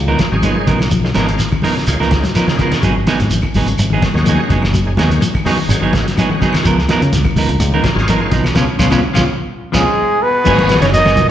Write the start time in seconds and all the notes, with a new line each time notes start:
Already playing: C#2
0.08 D#3 F3 B3 D#4 A#4
0.18 D#3 G#3 C#4 F4, kick, snare, closed hi-hat, high conga, shekere
0.32 G#1 D#3 F#3 G#3 C#4 G#4
0.43 F3 B3 D#4, closed hi-hat, high conga, claves, shekere
0.56 D#3, muted clean electric guitar stroke
0.67 B1 C#3 F3 B3 D#4 A#4, kick, closed hi-hat, high conga, low conga, shekere
0.79 muted clean electric guitar stroke, snare, claves
0.91 F3, kick, closed hi-hat, shekere
1.03 D#3 G#3 C#4 F4, muted clean electric guitar stroke, snare
1.14 G#1 D#3 F3 G#3 B3 C#4 D#4 F4 A#4, snare, closed hi-hat, high conga, claves, shekere
1.29 closed hi-hat
1.39 D#3, snare, closed hi-hat, shekere
1.52 D#3, muted clean electric guitar stroke, kick, claves
1.62 D#3 F3 G#3 B3 C#4 D#4 F4 A#4, snare, open hi-hat, high conga, low conga, shekere
1.76 C#3, muted clean electric guitar stroke, snare
1.87 C#2 D#3 G#3 C#4 F4, muted clean electric guitar stroke, closed hi-hat, claves, shekere
2.00 C#2 D#3 F3 B3 D#4 A#4, snare
2.11 D#3 G#3 C#4 D#4, kick, snare, closed hi-hat, high conga, shekere
2.24 F#3, snare, closed hi-hat, high conga
2.34 D#3 F3 G#3 B3 C#4 D#4 F4 A#4, snare, closed hi-hat, claves, shekere
2.47 D#3, muted clean electric guitar stroke, snare, low conga
2.58 C#3 F3 B3 A#4, muted clean electric guitar stroke, kick, closed hi-hat, low conga, shekere
2.71 muted fingered electric bass stroke, muted clean electric guitar stroke, snare, closed hi-hat, low conga, claves
2.83 G#1 F#3 B3 D#4 G#4, kick, closed hi-hat, shekere
2.96 muted clean electric guitar stroke
3.07 F#3 B3 D#4 G#4, snare, closed hi-hat, high conga, claves, shekere
3.20 G#2, muted clean electric guitar stroke, snare, closed hi-hat, low conga
3.30 G#1 F3, closed hi-hat, shekere
3.42 D#3, muted clean electric guitar stroke, kick, claves
3.54 G#1 F#3 B3 D#4 G#4, open hi-hat, high conga, low conga, shekere
3.66 G#1 C#3, muted clean electric guitar stroke, closed hi-hat
3.78 G#1, muted clean electric guitar stroke, closed hi-hat, high conga, claves, shekere
3.90 D#3 B3 G#4
3.94 F#3 D#4
4.01 D#3 G#3 C#4 F#4, kick, snare, closed hi-hat, high conga, shekere
4.06 muted clean electric guitar stroke
4.14 D#2 D#3 F#3 G#3 C#4 F#4, snare
4.25 F3 F#3 B3 D#4, closed hi-hat, high conga, claves, shekere
4.29 G#4
4.41 muted clean electric guitar stroke
4.48 F#1 C#3 F#3 B3, kick, closed hi-hat, high conga, low conga, shekere
4.52 D#4 G#4
4.62 muted clean electric guitar stroke, snare, claves
4.73 F#3, kick, closed hi-hat, shekere
4.85 D#3 G#3 C#4 G#4, muted clean electric guitar stroke
4.97 D#2 D#3 F#3 G#3 B3 C#4 D#4 F#4 G#4, snare, closed hi-hat, high conga, claves, shekere
5.10 muted clean electric guitar stroke, closed hi-hat, low conga
5.21 F3, closed hi-hat, high conga, shekere
5.34 D#3, muted clean electric guitar stroke, kick, claves
5.45 D#3 F#3 G#3 B3 C#4 D#4 F#4 G#4, snare, open hi-hat, high conga, low conga, shekere
5.57 D#3, muted clean electric guitar stroke
5.68 G#1 D#3 G#3 C#4 F#4, muted clean electric guitar stroke, closed hi-hat, claves, shekere
5.80 G#1 D#3 F#3 B3 D#4 G#4
5.92 D#3 G#3 C#4 F#4, kick, snare, closed hi-hat, high conga, shekere
6.05 F#3, snare, closed hi-hat
6.17 D#3 F3 F#3 G#3 B3 C#4 D#4 F#4 G#4, closed hi-hat, high conga, claves, shekere
6.29 D#3, muted clean electric guitar stroke
6.40 C#3 F#3 B3 D#4 G#4, kick, closed hi-hat, low conga, shekere
6.53 muted fingered electric bass stroke, muted clean electric guitar stroke, snare, closed hi-hat, claves
6.64 C#2 F3 B3 A#4, muted clean electric guitar stroke, kick, closed hi-hat, shekere
6.79 muted clean electric guitar stroke, snare
6.88 F3 B3 D#4 A#4, snare, closed hi-hat, high conga, claves, shekere
7.02 C#3, muted clean electric guitar stroke, closed hi-hat, low conga
7.12 C#2 D#3, snare, closed hi-hat, high conga, shekere
7.25 D#3, muted clean electric guitar stroke, kick, claves
7.36 C#2 F3 B3 D#4 A#4, open hi-hat, high conga, low conga, shekere
7.48 C#2 C#3, muted clean electric guitar stroke, closed hi-hat
7.60 C#2, muted clean electric guitar stroke, closed hi-hat, claves, shekere
7.72 D#3 F3 B3 D#4 A#4
7.82 D#3 G#3 C#4 F4, muted clean electric guitar stroke, kick, snare, closed hi-hat, high conga, shekere
7.93 G#1 D#3 F#3 G#3 C#4 F4
7.98 snare
8.07 F3 B3 D#4 A#4, closed hi-hat, high conga, claves, shekere
8.19 D#3, muted clean electric guitar stroke
8.31 B1 C#3 F3 B3 D#4, kick, closed hi-hat, low conga, shekere
8.44 muted clean electric guitar stroke, snare, claves
8.54 C#2 B2 C#3 F3 B3 C#4 F4, kick, snare, high conga, claves, shekere
8.78 C#2 B2 C#3 F3 B3 C#4 F4, kick, snare, high conga, claves, shekere
8.90 C#2 B2 C#3 F3 B3 C#4 F4, kick, snare, high conga, claves, shekere
9.13 C#2 B2 C#3 F3 B3 C#4 F4, kick, snare, high conga, claves, shekere
9.72 C#2 G#2 B2 C#3 F3 G#3 B3 C#4 F4 G#4, kick, snare, high conga, claves, shekere
10.22 B2 B3 B4
10.44 G#1 D#3 F#3 G#3 B3 C#4 F#4 G#4, muted clean electric guitar stroke, kick, crash, high conga, low conga, shekere
10.59 muted clean electric guitar stroke, high conga
10.68 F3, muted clean electric guitar stroke, snare, closed hi-hat, claves, shekere
10.80 F#1 C#3 D#3 B3 C#4 D#4 G#4 C#5, snare, closed hi-hat
10.92 D#3 F#3 D#4 D#5, muted clean electric guitar stroke, snare, closed hi-hat, high conga, shekere
11.05 B3 D#4 G#4, snare, high conga, claves
11.16 B1 F3, closed hi-hat, high conga, low conga, shekere
11.28 D#3